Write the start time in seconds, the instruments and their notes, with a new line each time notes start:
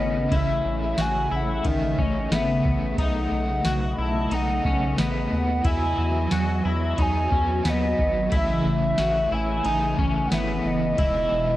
Already playing: analog synth pad C#3 A3 C#4, overdriven electric guitar A3 C#4 E4 G#4, clean electric guitar B3, soft synth lead D#5
0.00 analog synth bass G#1
0.29 analog synth bass A1, overdriven electric guitar A3 C#4, clean electric guitar E4, kick, ride
0.35 overdriven electric guitar E4 G#4, soft synth lead E5
0.65 analog synth bass A1
0.98 analog synth bass A1, clean electric guitar F#4, soft synth lead G#5, snare, ride, tambourine
1.31 analog synth bass A1, clean electric guitar E4
1.36 soft synth lead F#5
1.63 analog synth bass A1, clean electric guitar D#3, overdriven electric guitar A3 C#4, kick, ride
1.68 overdriven electric guitar G#4, soft synth lead E5
1.98 analog synth bass A1, clean electric guitar C#4, soft synth lead D#5, kick
2.30 analog synth bass G#1, overdriven electric guitar A3 C#4, clean electric guitar B3, snare, ride, tambourine
2.34 overdriven electric guitar E4 G#4, soft synth lead E5
2.65 analog synth bass A1, kick
2.95 analog synth bass B1, overdriven electric guitar B2, clean electric guitar D#4, analog synth pad D#5, kick, ride
2.99 overdriven electric guitar A3 B3 D#4, soft synth lead F#5
3.32 analog synth bass B1
3.65 analog synth bass B1, clean electric guitar F#4, snare, ride, tambourine
3.93 soft synth lead B5
3.98 analog synth bass B1, clean electric guitar E4, soft synth lead A5
4.29 analog synth bass B1, overdriven electric guitar A3 B3, clean electric guitar D#4, ride
4.34 overdriven electric guitar D#4 G#4, soft synth lead F#5
4.65 analog synth bass B1, clean electric guitar C#4, kick
4.97 analog synth bass A1, overdriven electric guitar A3 B3, clean electric guitar B3, snare, ride, tambourine
5.01 overdriven electric guitar D#4 G#4, soft synth lead F#5
5.32 analog synth bass D#2
5.62 analog synth bass E2, overdriven electric guitar E3 F#3, analog synth pad F#3 F#4 D#5, clean electric guitar E4, kick, ride
5.67 overdriven electric guitar B3 D#4, soft synth lead G#5
5.72 overdriven electric guitar G#4
5.98 analog synth bass E2
6.31 analog synth bass E2, clean electric guitar F#4, snare, ride, tambourine
6.65 analog synth bass E2, clean electric guitar E4, soft synth lead B5
6.96 analog synth bass E2, overdriven electric guitar F#3 B3, clean electric guitar D#4, kick, ride
7.01 overdriven electric guitar D#4 G#4, soft synth lead G#5
7.32 analog synth bass E2, clean electric guitar C#4, kick
7.63 analog synth bass D#2, overdriven electric guitar F#3 B3, clean electric guitar B3, snare, ride, tambourine
7.67 overdriven electric guitar D#4 G#4, soft synth lead D#5
7.99 analog synth bass G#1, kick
8.29 analog synth bass A1, analog synth pad C#3 E3 A3, overdriven electric guitar A3 C#4 E4, clean electric guitar E4, kick, ride
8.34 overdriven electric guitar G#4, soft synth lead E5
8.65 analog synth bass A1
8.96 analog synth bass A1, overdriven electric guitar A3 C#4, clean electric guitar F#4, snare, ride, tambourine
9.00 overdriven electric guitar E4 G#4
9.32 analog synth bass A1, clean electric guitar E4, soft synth lead G#5
9.63 analog synth bass A1, overdriven electric guitar A3 C#4, clean electric guitar D#4, ride
9.67 overdriven electric guitar E4 G#4
9.98 analog synth bass A1, clean electric guitar C#4, kick
10.28 overdriven electric guitar A3, soft synth lead F#5
10.32 analog synth bass G#1, clean electric guitar B3, overdriven electric guitar C#4 E4, soft synth lead E5, snare, ride, tambourine
10.36 overdriven electric guitar G#4
10.65 analog synth bass F#1, soft synth lead D#5
10.96 analog synth bass E1, analog synth pad B2 B3, overdriven electric guitar E3 G#3, clean electric guitar E4, kick, ride
11.01 overdriven electric guitar B3 D#4
11.05 overdriven electric guitar G#4
11.32 analog synth bass E1